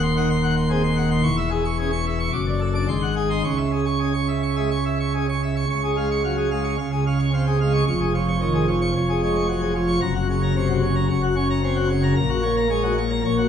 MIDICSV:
0, 0, Header, 1, 2, 480
1, 0, Start_track
1, 0, Key_signature, 4, "minor"
1, 0, Tempo, 542986
1, 1094, Time_signature, 4, 2, 24, 8
1, 2059, Tempo, 556586
1, 4956, Key_signature, -5, "major"
1, 5899, Tempo, 538117
1, 11878, End_track
2, 0, Start_track
2, 0, Title_t, "Pipe organ"
2, 0, Program_c, 0, 19
2, 0, Note_on_c, 0, 27, 107
2, 0, Note_on_c, 0, 39, 109
2, 19, Note_on_c, 0, 84, 85
2, 126, Note_off_c, 0, 84, 0
2, 149, Note_on_c, 0, 78, 83
2, 151, Note_on_c, 0, 51, 77
2, 251, Note_off_c, 0, 78, 0
2, 252, Note_off_c, 0, 51, 0
2, 266, Note_on_c, 0, 84, 76
2, 369, Note_off_c, 0, 84, 0
2, 380, Note_on_c, 0, 78, 78
2, 485, Note_off_c, 0, 78, 0
2, 502, Note_on_c, 0, 84, 85
2, 606, Note_off_c, 0, 84, 0
2, 620, Note_on_c, 0, 68, 83
2, 621, Note_on_c, 0, 60, 76
2, 725, Note_off_c, 0, 60, 0
2, 725, Note_off_c, 0, 68, 0
2, 739, Note_on_c, 0, 84, 67
2, 844, Note_off_c, 0, 84, 0
2, 855, Note_on_c, 0, 78, 76
2, 962, Note_off_c, 0, 78, 0
2, 979, Note_on_c, 0, 84, 82
2, 1069, Note_off_c, 0, 27, 0
2, 1069, Note_off_c, 0, 39, 0
2, 1079, Note_off_c, 0, 84, 0
2, 1088, Note_on_c, 0, 40, 99
2, 1089, Note_on_c, 0, 28, 99
2, 1091, Note_on_c, 0, 85, 115
2, 1199, Note_off_c, 0, 85, 0
2, 1215, Note_on_c, 0, 76, 75
2, 1322, Note_off_c, 0, 76, 0
2, 1334, Note_on_c, 0, 68, 81
2, 1442, Note_off_c, 0, 68, 0
2, 1457, Note_on_c, 0, 85, 72
2, 1563, Note_off_c, 0, 85, 0
2, 1581, Note_on_c, 0, 68, 70
2, 1584, Note_on_c, 0, 61, 71
2, 1686, Note_off_c, 0, 68, 0
2, 1688, Note_off_c, 0, 61, 0
2, 1700, Note_on_c, 0, 85, 74
2, 1806, Note_off_c, 0, 85, 0
2, 1826, Note_on_c, 0, 76, 74
2, 1930, Note_off_c, 0, 76, 0
2, 1940, Note_on_c, 0, 85, 66
2, 2027, Note_off_c, 0, 40, 0
2, 2028, Note_off_c, 0, 28, 0
2, 2042, Note_off_c, 0, 85, 0
2, 2057, Note_on_c, 0, 86, 85
2, 2059, Note_on_c, 0, 42, 78
2, 2063, Note_on_c, 0, 30, 77
2, 2164, Note_off_c, 0, 86, 0
2, 2182, Note_on_c, 0, 74, 71
2, 2286, Note_off_c, 0, 74, 0
2, 2299, Note_on_c, 0, 69, 64
2, 2405, Note_off_c, 0, 69, 0
2, 2421, Note_on_c, 0, 62, 61
2, 2421, Note_on_c, 0, 86, 67
2, 2520, Note_off_c, 0, 62, 0
2, 2520, Note_off_c, 0, 86, 0
2, 2521, Note_off_c, 0, 42, 0
2, 2523, Note_off_c, 0, 30, 0
2, 2537, Note_on_c, 0, 32, 77
2, 2538, Note_on_c, 0, 44, 78
2, 2538, Note_on_c, 0, 84, 86
2, 2644, Note_off_c, 0, 84, 0
2, 2655, Note_on_c, 0, 78, 57
2, 2762, Note_off_c, 0, 78, 0
2, 2777, Note_on_c, 0, 68, 63
2, 2883, Note_off_c, 0, 68, 0
2, 2896, Note_on_c, 0, 63, 61
2, 2898, Note_on_c, 0, 84, 64
2, 2998, Note_off_c, 0, 63, 0
2, 2999, Note_off_c, 0, 84, 0
2, 3002, Note_off_c, 0, 32, 0
2, 3002, Note_off_c, 0, 44, 0
2, 3018, Note_on_c, 0, 49, 76
2, 3019, Note_on_c, 0, 85, 87
2, 3020, Note_on_c, 0, 37, 74
2, 3126, Note_off_c, 0, 85, 0
2, 3136, Note_on_c, 0, 76, 57
2, 3245, Note_off_c, 0, 76, 0
2, 3263, Note_on_c, 0, 68, 61
2, 3370, Note_off_c, 0, 68, 0
2, 3379, Note_on_c, 0, 85, 57
2, 3488, Note_off_c, 0, 85, 0
2, 3500, Note_on_c, 0, 61, 58
2, 3501, Note_on_c, 0, 68, 61
2, 3610, Note_off_c, 0, 61, 0
2, 3611, Note_off_c, 0, 68, 0
2, 3619, Note_on_c, 0, 85, 59
2, 3730, Note_off_c, 0, 85, 0
2, 3744, Note_on_c, 0, 76, 55
2, 3854, Note_off_c, 0, 76, 0
2, 3868, Note_on_c, 0, 85, 56
2, 3977, Note_off_c, 0, 85, 0
2, 3986, Note_on_c, 0, 76, 59
2, 3990, Note_on_c, 0, 56, 49
2, 4097, Note_off_c, 0, 76, 0
2, 4099, Note_off_c, 0, 56, 0
2, 4113, Note_on_c, 0, 85, 58
2, 4221, Note_off_c, 0, 85, 0
2, 4238, Note_on_c, 0, 76, 59
2, 4344, Note_off_c, 0, 76, 0
2, 4362, Note_on_c, 0, 85, 58
2, 4466, Note_off_c, 0, 85, 0
2, 4485, Note_on_c, 0, 61, 56
2, 4486, Note_on_c, 0, 68, 56
2, 4588, Note_off_c, 0, 61, 0
2, 4589, Note_off_c, 0, 68, 0
2, 4613, Note_on_c, 0, 85, 53
2, 4713, Note_off_c, 0, 85, 0
2, 4734, Note_on_c, 0, 76, 58
2, 4834, Note_off_c, 0, 76, 0
2, 4847, Note_on_c, 0, 85, 56
2, 4922, Note_off_c, 0, 49, 0
2, 4923, Note_off_c, 0, 37, 0
2, 4944, Note_off_c, 0, 85, 0
2, 4963, Note_on_c, 0, 37, 78
2, 4963, Note_on_c, 0, 49, 79
2, 4963, Note_on_c, 0, 85, 96
2, 5065, Note_off_c, 0, 85, 0
2, 5086, Note_on_c, 0, 68, 64
2, 5186, Note_off_c, 0, 68, 0
2, 5198, Note_on_c, 0, 56, 59
2, 5200, Note_on_c, 0, 77, 67
2, 5301, Note_off_c, 0, 77, 0
2, 5320, Note_on_c, 0, 85, 65
2, 5405, Note_off_c, 0, 56, 0
2, 5420, Note_off_c, 0, 85, 0
2, 5438, Note_on_c, 0, 54, 54
2, 5438, Note_on_c, 0, 77, 66
2, 5538, Note_off_c, 0, 77, 0
2, 5545, Note_on_c, 0, 68, 62
2, 5633, Note_off_c, 0, 54, 0
2, 5650, Note_off_c, 0, 68, 0
2, 5661, Note_on_c, 0, 56, 62
2, 5662, Note_on_c, 0, 77, 65
2, 5767, Note_off_c, 0, 77, 0
2, 5776, Note_on_c, 0, 85, 62
2, 5871, Note_off_c, 0, 56, 0
2, 5881, Note_off_c, 0, 37, 0
2, 5883, Note_off_c, 0, 49, 0
2, 5883, Note_off_c, 0, 85, 0
2, 5898, Note_on_c, 0, 37, 64
2, 5900, Note_on_c, 0, 49, 65
2, 5900, Note_on_c, 0, 77, 58
2, 6007, Note_off_c, 0, 77, 0
2, 6023, Note_on_c, 0, 68, 61
2, 6129, Note_off_c, 0, 68, 0
2, 6149, Note_on_c, 0, 61, 54
2, 6153, Note_on_c, 0, 77, 67
2, 6256, Note_off_c, 0, 77, 0
2, 6268, Note_on_c, 0, 85, 66
2, 6362, Note_off_c, 0, 61, 0
2, 6373, Note_off_c, 0, 85, 0
2, 6395, Note_on_c, 0, 60, 57
2, 6396, Note_on_c, 0, 77, 65
2, 6499, Note_off_c, 0, 77, 0
2, 6512, Note_on_c, 0, 68, 59
2, 6595, Note_off_c, 0, 60, 0
2, 6616, Note_off_c, 0, 68, 0
2, 6637, Note_on_c, 0, 77, 70
2, 6638, Note_on_c, 0, 56, 62
2, 6739, Note_off_c, 0, 77, 0
2, 6750, Note_on_c, 0, 85, 66
2, 6836, Note_off_c, 0, 37, 0
2, 6836, Note_off_c, 0, 56, 0
2, 6837, Note_off_c, 0, 49, 0
2, 6850, Note_off_c, 0, 85, 0
2, 6873, Note_on_c, 0, 29, 86
2, 6875, Note_on_c, 0, 85, 100
2, 6877, Note_on_c, 0, 41, 78
2, 6977, Note_off_c, 0, 85, 0
2, 6993, Note_on_c, 0, 68, 63
2, 7096, Note_off_c, 0, 68, 0
2, 7115, Note_on_c, 0, 53, 64
2, 7116, Note_on_c, 0, 73, 72
2, 7218, Note_off_c, 0, 73, 0
2, 7235, Note_on_c, 0, 85, 67
2, 7324, Note_off_c, 0, 53, 0
2, 7337, Note_off_c, 0, 85, 0
2, 7349, Note_on_c, 0, 51, 55
2, 7350, Note_on_c, 0, 73, 74
2, 7455, Note_off_c, 0, 73, 0
2, 7473, Note_on_c, 0, 68, 66
2, 7552, Note_off_c, 0, 51, 0
2, 7577, Note_off_c, 0, 68, 0
2, 7592, Note_on_c, 0, 73, 71
2, 7593, Note_on_c, 0, 53, 67
2, 7697, Note_off_c, 0, 73, 0
2, 7714, Note_on_c, 0, 85, 69
2, 7805, Note_off_c, 0, 53, 0
2, 7818, Note_off_c, 0, 85, 0
2, 7820, Note_off_c, 0, 29, 0
2, 7822, Note_off_c, 0, 41, 0
2, 7838, Note_on_c, 0, 29, 64
2, 7839, Note_on_c, 0, 73, 70
2, 7840, Note_on_c, 0, 41, 64
2, 7941, Note_off_c, 0, 73, 0
2, 7961, Note_on_c, 0, 68, 68
2, 8062, Note_off_c, 0, 68, 0
2, 8080, Note_on_c, 0, 56, 63
2, 8082, Note_on_c, 0, 73, 72
2, 8182, Note_off_c, 0, 73, 0
2, 8192, Note_on_c, 0, 85, 73
2, 8288, Note_off_c, 0, 56, 0
2, 8297, Note_off_c, 0, 85, 0
2, 8313, Note_on_c, 0, 54, 59
2, 8316, Note_on_c, 0, 73, 68
2, 8419, Note_off_c, 0, 73, 0
2, 8426, Note_on_c, 0, 68, 58
2, 8514, Note_off_c, 0, 54, 0
2, 8533, Note_off_c, 0, 68, 0
2, 8549, Note_on_c, 0, 73, 73
2, 8550, Note_on_c, 0, 53, 62
2, 8654, Note_off_c, 0, 73, 0
2, 8664, Note_on_c, 0, 85, 75
2, 8752, Note_off_c, 0, 53, 0
2, 8762, Note_off_c, 0, 29, 0
2, 8763, Note_off_c, 0, 41, 0
2, 8766, Note_off_c, 0, 85, 0
2, 8778, Note_on_c, 0, 42, 89
2, 8779, Note_on_c, 0, 82, 108
2, 8780, Note_on_c, 0, 30, 84
2, 8889, Note_off_c, 0, 82, 0
2, 8901, Note_on_c, 0, 66, 66
2, 9010, Note_off_c, 0, 66, 0
2, 9032, Note_on_c, 0, 73, 73
2, 9033, Note_on_c, 0, 49, 67
2, 9136, Note_off_c, 0, 73, 0
2, 9150, Note_on_c, 0, 82, 73
2, 9242, Note_off_c, 0, 49, 0
2, 9254, Note_off_c, 0, 82, 0
2, 9270, Note_on_c, 0, 73, 76
2, 9274, Note_on_c, 0, 48, 57
2, 9374, Note_off_c, 0, 73, 0
2, 9389, Note_on_c, 0, 66, 69
2, 9472, Note_off_c, 0, 48, 0
2, 9493, Note_off_c, 0, 66, 0
2, 9505, Note_on_c, 0, 49, 66
2, 9505, Note_on_c, 0, 73, 80
2, 9610, Note_off_c, 0, 73, 0
2, 9621, Note_on_c, 0, 82, 72
2, 9718, Note_off_c, 0, 49, 0
2, 9729, Note_off_c, 0, 82, 0
2, 9735, Note_off_c, 0, 42, 0
2, 9736, Note_off_c, 0, 30, 0
2, 9751, Note_on_c, 0, 73, 78
2, 9753, Note_on_c, 0, 42, 73
2, 9754, Note_on_c, 0, 30, 67
2, 9854, Note_off_c, 0, 73, 0
2, 9866, Note_on_c, 0, 66, 68
2, 9971, Note_off_c, 0, 66, 0
2, 9983, Note_on_c, 0, 73, 78
2, 9985, Note_on_c, 0, 61, 68
2, 10089, Note_off_c, 0, 73, 0
2, 10110, Note_on_c, 0, 82, 82
2, 10198, Note_off_c, 0, 61, 0
2, 10213, Note_off_c, 0, 82, 0
2, 10227, Note_on_c, 0, 73, 72
2, 10228, Note_on_c, 0, 60, 65
2, 10332, Note_off_c, 0, 73, 0
2, 10340, Note_on_c, 0, 66, 68
2, 10429, Note_off_c, 0, 60, 0
2, 10448, Note_off_c, 0, 66, 0
2, 10461, Note_on_c, 0, 49, 69
2, 10462, Note_on_c, 0, 73, 79
2, 10569, Note_off_c, 0, 73, 0
2, 10584, Note_on_c, 0, 82, 79
2, 10666, Note_off_c, 0, 49, 0
2, 10679, Note_off_c, 0, 42, 0
2, 10680, Note_off_c, 0, 30, 0
2, 10682, Note_off_c, 0, 82, 0
2, 10699, Note_on_c, 0, 34, 96
2, 10700, Note_on_c, 0, 82, 119
2, 10701, Note_on_c, 0, 46, 95
2, 10808, Note_off_c, 0, 82, 0
2, 10818, Note_on_c, 0, 66, 72
2, 10927, Note_off_c, 0, 66, 0
2, 10933, Note_on_c, 0, 73, 87
2, 10935, Note_on_c, 0, 58, 78
2, 11044, Note_off_c, 0, 73, 0
2, 11061, Note_on_c, 0, 82, 78
2, 11153, Note_off_c, 0, 58, 0
2, 11169, Note_off_c, 0, 82, 0
2, 11176, Note_on_c, 0, 73, 76
2, 11178, Note_on_c, 0, 56, 70
2, 11286, Note_off_c, 0, 73, 0
2, 11296, Note_on_c, 0, 66, 73
2, 11384, Note_off_c, 0, 56, 0
2, 11406, Note_off_c, 0, 66, 0
2, 11423, Note_on_c, 0, 58, 70
2, 11424, Note_on_c, 0, 73, 81
2, 11530, Note_off_c, 0, 73, 0
2, 11539, Note_on_c, 0, 82, 82
2, 11636, Note_off_c, 0, 58, 0
2, 11645, Note_off_c, 0, 34, 0
2, 11646, Note_off_c, 0, 82, 0
2, 11648, Note_off_c, 0, 46, 0
2, 11663, Note_on_c, 0, 34, 76
2, 11666, Note_on_c, 0, 46, 75
2, 11668, Note_on_c, 0, 73, 79
2, 11771, Note_off_c, 0, 73, 0
2, 11783, Note_on_c, 0, 66, 70
2, 11878, Note_off_c, 0, 34, 0
2, 11878, Note_off_c, 0, 46, 0
2, 11878, Note_off_c, 0, 66, 0
2, 11878, End_track
0, 0, End_of_file